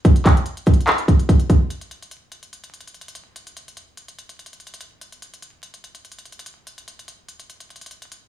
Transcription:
0.05 kick, closed hi-hat
0.16 closed hi-hat
0.26 kick, clap, closed hi-hat
0.37 closed hi-hat
0.46 closed hi-hat
0.57 closed hi-hat
0.66 kick, closed hi-hat, open hi-hat
0.74 closed hi-hat
0.81 closed hi-hat
0.87 clap, closed hi-hat
0.98 closed hi-hat
1.08 kick, closed hi-hat
1.19 closed hi-hat
1.29 kick, closed hi-hat
1.40 closed hi-hat
1.50 kick, closed hi-hat
1.70 closed hi-hat
1.81 closed hi-hat
1.91 closed hi-hat
2.02 closed hi-hat
2.11 closed hi-hat
2.32 closed hi-hat
2.43 closed hi-hat
2.53 closed hi-hat
2.64 closed hi-hat
2.74 closed hi-hat
2.81 closed hi-hat
2.88 closed hi-hat
2.94 closed hi-hat
3.01 closed hi-hat
3.08 closed hi-hat
3.15 closed hi-hat
3.36 closed hi-hat
3.47 closed hi-hat
3.57 closed hi-hat
3.68 closed hi-hat
3.77 closed hi-hat
3.97 closed hi-hat
4.08 closed hi-hat
4.19 closed hi-hat
4.29 closed hi-hat
4.39 closed hi-hat
4.46 closed hi-hat
4.53 closed hi-hat
4.60 closed hi-hat
4.67 closed hi-hat
4.74 closed hi-hat
4.81 closed hi-hat
5.01 closed hi-hat
5.12 closed hi-hat
5.22 closed hi-hat
5.34 closed hi-hat
5.42 closed hi-hat
5.63 closed hi-hat
5.74 closed hi-hat
5.84 closed hi-hat
5.95 closed hi-hat
6.05 closed hi-hat
6.12 closed hi-hat
6.19 closed hi-hat
6.26 closed hi-hat
6.32 closed hi-hat
6.39 closed hi-hat
6.46 closed hi-hat
6.67 closed hi-hat
6.78 closed hi-hat
6.88 closed hi-hat
6.99 closed hi-hat
7.08 closed hi-hat
7.28 closed hi-hat
7.40 closed hi-hat
7.50 closed hi-hat
7.60 closed hi-hat
7.70 closed hi-hat
7.76 closed hi-hat
7.81 closed hi-hat
7.86 closed hi-hat
7.91 closed hi-hat
8.02 closed hi-hat
8.12 closed hi-hat

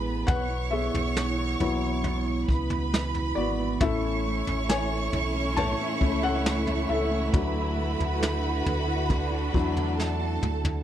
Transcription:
Already playing: A1 E2 E3 G#3 B3 E4 G#4 B4 G#5 B5
0.06 B3
0.27 B1 B2 B4 C#5 F#5 C#6, kick, floor tom
0.50 E4
0.71 B3 G#4 E5
0.93 B1 E4, floor tom
1.17 E3, snare
1.39 F#4
1.60 B1 F#3 B3 E4, floor tom
1.83 E4
2.04 B2, floor tom
2.26 E4
2.48 C#2 B3 B4 B5, kick
2.70 E4, floor tom
2.93 E3, snare
3.15 F#4, floor tom
3.35 G#1 B3 F#4 D5
3.60 E4
3.81 A1 A2 A3 C#4 E4 A4 C#5 E5 C#6, kick, floor tom
4.04 C#4
4.26 A3
4.47 A1 C#4, floor tom
4.69 E3 C#5 G#5, snare
4.92 A4
5.13 B1 A3, floor tom
5.36 C#4
5.56 A2 C#5 A5, floor tom
5.79 C#4
6.00 C#2 A3 C#4 E4, kick
6.23 C#4 A4 F#5
6.44 E3, snare
6.66 A4, floor tom
6.88 C#2 A3 A4 E5
7.11 C#4
7.32 D2 D3 F#3 D4 E4 F#4 B4 B5, kick, floor tom
7.54 E4
7.76 A3
7.98 D2 E4, floor tom
8.20 A3, snare
8.43 F#4
8.65 D2 A3, floor tom
8.87 E4
9.09 D3 D4, kick, floor tom
9.30 E4
9.52 E2 F#3 A3 D4 E4, kick
9.76 E4, floor tom
9.97 A3 A4 A5, snare
10.20 F#4
10.42 D2 A3, mid tom
10.64 E4, floor tom

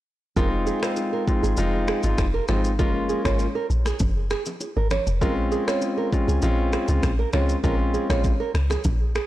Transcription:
0.36 F1 G#3 C4 D#4 F4 A#4, kick, low conga, shaker
0.67 G#4, low bongo, shaker
0.82 G#3 C4 D#4 F4 C5, finger snap, cross-stick, shaker
0.96 high bongo, shaker
1.13 A#4
1.27 G#3 C4 D#4 F4, kick, shaker
1.43 G#1 G#4, high bongo, shaker
1.57 F1 G#3 C4 D#4 F4, high bongo, low bongo, low conga, shaker
1.88 G#4, finger snap, cross-stick, shaker
2.03 G#1 G#3 C4 D#4 F4, low bongo, shaker
2.18 F1, finger snap, kick, cross-stick, high bongo, shaker
2.34 A#4
2.48 G#1 G#3 C4 D#4 F4 C5, finger snap, cross-stick, low conga, shaker
2.64 shaker
2.79 F#1 G#3 A#3 C#4 F4 A#4, kick, low conga, shaker
3.09 G#4, low bongo, shaker
3.25 G#1 G#3 A#3 C#4 F4 C#5, finger snap, kick, cross-stick, shaker
3.39 high bongo, shaker
3.55 A#4
3.70 A#1, shaker
3.85 G#4, finger snap, cross-stick, high bongo, shaker
3.99 F#1, kick, high bongo, low bongo, low conga, shaker
4.30 G#4, finger snap, cross-stick, shaker
4.46 low bongo, shaker
4.60 high bongo, shaker
4.77 G#1 A#4
4.90 C#5, finger snap, cross-stick, low conga, shaker
5.07 F1, shaker
5.21 A#1 G#3 C4 C#4 F4 A#4, kick, low conga, shaker
5.52 G#4, low bongo, shaker
5.67 G#3 C4 C#4 F4 C#5, finger snap, cross-stick, shaker
5.81 high bongo, shaker
5.98 A#4
6.12 G#3 C4 C#4 F4, kick, shaker
6.28 C#2 G#4, high bongo, shaker
6.42 A#1 G#3 C4 C#4 F4, high bongo, low bongo, low conga, shaker
6.73 G#4, finger snap, cross-stick, shaker
6.88 C#2 G#3 C4 C#4 F4, low bongo, shaker
7.03 A#1, finger snap, kick, cross-stick, high bongo, shaker
7.19 A#4
7.33 C#2 G#3 C4 C#4 F4 C#5, finger snap, cross-stick, low conga, shaker
7.49 shaker
7.64 A#1 G#3 C4 C#4 F4 A#4, kick, low conga, shaker
7.94 G#4, low bongo, shaker
8.10 A#1 G#3 C4 C#4 F4 C#5, finger snap, kick, cross-stick, shaker
8.24 kick, high bongo, shaker
8.40 A#4
8.55 C#2, finger snap, cross-stick, shaker
8.70 G#4, finger snap, cross-stick, high bongo, low bongo, shaker
8.84 A#1, kick, high bongo, low bongo, low conga, shaker
9.15 G#4, finger snap, cross-stick, shaker

